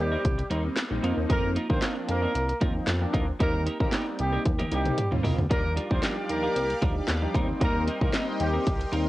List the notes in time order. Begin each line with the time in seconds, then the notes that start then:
Already playing: G3 A#3 C4 D#4
0.00 D#2 G3 G4
0.12 G3 C4 D#4 A#4
0.25 C2, kick, closed hi-hat
0.38 muted clean electric guitar stroke, closed hi-hat
0.50 D#2 G3 A#3 C4 D#4 A#4, closed hi-hat
0.64 muted clean electric guitar stroke
0.76 muted clean electric guitar stroke, snare, clap, closed hi-hat
0.91 A#1 G3 A#3 C4 D#4, muted clean electric guitar stroke
1.03 F2 F3 A#3 C4 D#4 F4 A#4, closed hi-hat
1.17 D#2, muted clean electric guitar stroke
1.29 F2 A#3 D#4 F4 A#4, kick, closed hi-hat
1.56 A#3 D#4 F4 A#4, closed hi-hat
1.70 D#2 F3 A#3 C4 D4 D#4 F4 A#4 C5, kick
1.82 A#3 D#4 F4 A#4, snare, clap, closed hi-hat
1.96 muted clean electric guitar stroke
2.08 F2 A#3 A#4, muted clean electric guitar stroke, closed hi-hat
2.22 A#3 D#4 F4 A#4
2.34 C2, muted clean electric guitar stroke, closed hi-hat
2.49 muted clean electric guitar stroke, closed hi-hat
2.61 D#2 F3 A#3 C4 D#4 F4 A#4, kick, closed hi-hat
2.75 muted clean electric guitar stroke
2.87 F2, muted clean electric guitar stroke, snare, clap, closed hi-hat
3.01 F3 A#3 C4 D4, muted clean electric guitar stroke
3.13 D2 A#3 D#4 F4 A#4, kick, closed hi-hat
3.27 muted clean electric guitar stroke
3.40 D#2 G3 A#3 C4 D#4 G4 A#4, kick, closed hi-hat
3.66 A#3 D#4 G4 A#4, closed hi-hat
3.80 D#2 G3 A#3 C4 D#4 G4 A#4, kick
3.92 A#3 D#4 G4 A#4, snare, clap, closed hi-hat
4.06 muted clean electric guitar stroke
4.19 C2 G3 G4, muted clean electric guitar stroke, closed hi-hat
4.33 A#3 D#4 G4 A#4
4.45 D#2, muted clean electric guitar stroke, kick, closed hi-hat, high tom
4.59 A#3 D#4 G4 A#4, closed hi-hat, high tom
4.71 C2 G3 A#3 C4 D#4 G4 A#4, closed hi-hat
4.85 muted clean electric guitar stroke, closed hi-hat, mid tom
4.97 muted clean electric guitar stroke, closed hi-hat, mid tom
5.11 D#2 G3 A#3 C4 F4, muted clean electric guitar stroke, mid tom
5.23 C2 A#3 D#4 G4 A#4, floor tom, open hi-hat
5.38 D2, muted clean electric guitar stroke, floor tom
5.50 D#2 F3 G3 A#3 D4 D#4 F4 G4 A#4 D5 F5 D6, kick, closed hi-hat
5.76 G3 D4 F4 A#4, closed hi-hat
5.90 D2 F3 G3 C4 D4 D#4 F4 A#4 C5, kick
6.02 G3 D4 F4 A#4, snare, clap, closed hi-hat
6.17 muted clean electric guitar stroke
6.29 D#2 A#3 A#4, muted clean electric guitar stroke, closed hi-hat
6.43 G3 D4 F4 A#4
6.55 C2, muted clean electric guitar stroke, closed hi-hat
6.69 muted clean electric guitar stroke, closed hi-hat
6.82 D2 F3 G3 D4 D#4 F4 A#4, kick, closed hi-hat
6.96 muted clean electric guitar stroke
7.08 D#2, muted clean electric guitar stroke, snare, clap, closed hi-hat
7.22 F3 G3 D4 D#4, muted clean electric guitar stroke
7.34 D#2 G3 A#3 C4 D#4 A#4 D#5 G5 C6, kick, closed hi-hat
7.48 muted clean electric guitar stroke
7.60 D#2 G3 A#3 C4 D#4 A#4, kick, closed hi-hat
7.87 G3 C4 D#4 A#4, closed hi-hat
8.01 C2 G3 A#3 C4 D#4 A#4, kick
8.13 G3 C4 D#4 A#4, snare, clap, closed hi-hat
8.27 muted clean electric guitar stroke
8.40 D#2 G3 G4, muted clean electric guitar stroke, closed hi-hat
8.53 G3 C4 D#4 A#4
8.66 C2, muted clean electric guitar stroke, kick, closed hi-hat
8.80 muted clean electric guitar stroke, closed hi-hat
8.92 D#2 G3 A#3 C4 D#4 A#4, closed hi-hat